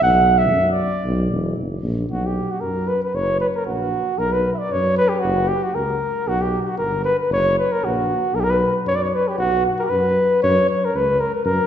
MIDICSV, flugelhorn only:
0, 0, Header, 1, 2, 480
1, 0, Start_track
1, 0, Key_signature, 2, "minor"
1, 0, Tempo, 520382
1, 17, Time_signature, 2, 2, 24, 8
1, 10762, End_track
2, 0, Start_track
2, 0, Title_t, "Flugelhorn"
2, 0, Program_c, 0, 56
2, 25, Note_on_c, 0, 78, 96
2, 350, Note_on_c, 0, 76, 85
2, 364, Note_off_c, 0, 78, 0
2, 649, Note_off_c, 0, 76, 0
2, 654, Note_on_c, 0, 74, 82
2, 1337, Note_off_c, 0, 74, 0
2, 1952, Note_on_c, 0, 66, 72
2, 2085, Note_on_c, 0, 67, 67
2, 2099, Note_off_c, 0, 66, 0
2, 2317, Note_on_c, 0, 66, 65
2, 2331, Note_off_c, 0, 67, 0
2, 2400, Note_on_c, 0, 70, 75
2, 2414, Note_off_c, 0, 66, 0
2, 2652, Note_on_c, 0, 71, 81
2, 2665, Note_off_c, 0, 70, 0
2, 2783, Note_off_c, 0, 71, 0
2, 2792, Note_on_c, 0, 71, 80
2, 2906, Note_on_c, 0, 73, 103
2, 2919, Note_off_c, 0, 71, 0
2, 3133, Note_off_c, 0, 73, 0
2, 3139, Note_on_c, 0, 71, 78
2, 3197, Note_off_c, 0, 71, 0
2, 3275, Note_on_c, 0, 70, 75
2, 3368, Note_off_c, 0, 70, 0
2, 3374, Note_on_c, 0, 66, 77
2, 3858, Note_on_c, 0, 70, 92
2, 3872, Note_off_c, 0, 66, 0
2, 3990, Note_on_c, 0, 71, 77
2, 4003, Note_off_c, 0, 70, 0
2, 4175, Note_off_c, 0, 71, 0
2, 4181, Note_on_c, 0, 76, 55
2, 4227, Note_on_c, 0, 74, 90
2, 4241, Note_off_c, 0, 76, 0
2, 4352, Note_on_c, 0, 73, 87
2, 4365, Note_off_c, 0, 74, 0
2, 4576, Note_off_c, 0, 73, 0
2, 4582, Note_on_c, 0, 71, 102
2, 4694, Note_on_c, 0, 67, 82
2, 4708, Note_off_c, 0, 71, 0
2, 4793, Note_on_c, 0, 66, 90
2, 4807, Note_off_c, 0, 67, 0
2, 5054, Note_on_c, 0, 67, 80
2, 5067, Note_off_c, 0, 66, 0
2, 5195, Note_on_c, 0, 66, 73
2, 5209, Note_off_c, 0, 67, 0
2, 5303, Note_on_c, 0, 70, 86
2, 5317, Note_off_c, 0, 66, 0
2, 5793, Note_on_c, 0, 66, 89
2, 5807, Note_off_c, 0, 70, 0
2, 5913, Note_on_c, 0, 67, 79
2, 5927, Note_off_c, 0, 66, 0
2, 6107, Note_off_c, 0, 67, 0
2, 6112, Note_on_c, 0, 67, 49
2, 6148, Note_on_c, 0, 66, 76
2, 6162, Note_off_c, 0, 67, 0
2, 6249, Note_off_c, 0, 66, 0
2, 6255, Note_on_c, 0, 70, 81
2, 6483, Note_off_c, 0, 70, 0
2, 6500, Note_on_c, 0, 71, 89
2, 6623, Note_off_c, 0, 71, 0
2, 6630, Note_on_c, 0, 71, 72
2, 6735, Note_off_c, 0, 71, 0
2, 6761, Note_on_c, 0, 73, 105
2, 6977, Note_off_c, 0, 73, 0
2, 6992, Note_on_c, 0, 71, 73
2, 7118, Note_on_c, 0, 70, 80
2, 7132, Note_off_c, 0, 71, 0
2, 7235, Note_on_c, 0, 66, 73
2, 7249, Note_off_c, 0, 70, 0
2, 7702, Note_on_c, 0, 70, 88
2, 7715, Note_off_c, 0, 66, 0
2, 7749, Note_on_c, 0, 67, 82
2, 7763, Note_off_c, 0, 70, 0
2, 7782, Note_on_c, 0, 70, 101
2, 7796, Note_off_c, 0, 67, 0
2, 7841, Note_on_c, 0, 71, 84
2, 7854, Note_off_c, 0, 70, 0
2, 8076, Note_off_c, 0, 71, 0
2, 8188, Note_on_c, 0, 73, 100
2, 8258, Note_on_c, 0, 74, 76
2, 8272, Note_off_c, 0, 73, 0
2, 8325, Note_on_c, 0, 73, 80
2, 8339, Note_off_c, 0, 74, 0
2, 8435, Note_on_c, 0, 71, 82
2, 8449, Note_off_c, 0, 73, 0
2, 8558, Note_on_c, 0, 67, 70
2, 8572, Note_off_c, 0, 71, 0
2, 8646, Note_off_c, 0, 67, 0
2, 8651, Note_on_c, 0, 66, 102
2, 8879, Note_off_c, 0, 66, 0
2, 8906, Note_on_c, 0, 66, 74
2, 9032, Note_on_c, 0, 70, 84
2, 9046, Note_off_c, 0, 66, 0
2, 9061, Note_on_c, 0, 67, 66
2, 9075, Note_off_c, 0, 70, 0
2, 9084, Note_on_c, 0, 70, 86
2, 9098, Note_off_c, 0, 67, 0
2, 9127, Note_on_c, 0, 71, 90
2, 9141, Note_off_c, 0, 70, 0
2, 9612, Note_off_c, 0, 71, 0
2, 9620, Note_on_c, 0, 73, 106
2, 9842, Note_off_c, 0, 73, 0
2, 9860, Note_on_c, 0, 73, 82
2, 10006, Note_on_c, 0, 70, 80
2, 10020, Note_off_c, 0, 73, 0
2, 10111, Note_on_c, 0, 71, 90
2, 10125, Note_off_c, 0, 70, 0
2, 10333, Note_on_c, 0, 70, 88
2, 10347, Note_off_c, 0, 71, 0
2, 10463, Note_off_c, 0, 70, 0
2, 10469, Note_on_c, 0, 70, 66
2, 10557, Note_off_c, 0, 70, 0
2, 10563, Note_on_c, 0, 70, 92
2, 10762, Note_off_c, 0, 70, 0
2, 10762, End_track
0, 0, End_of_file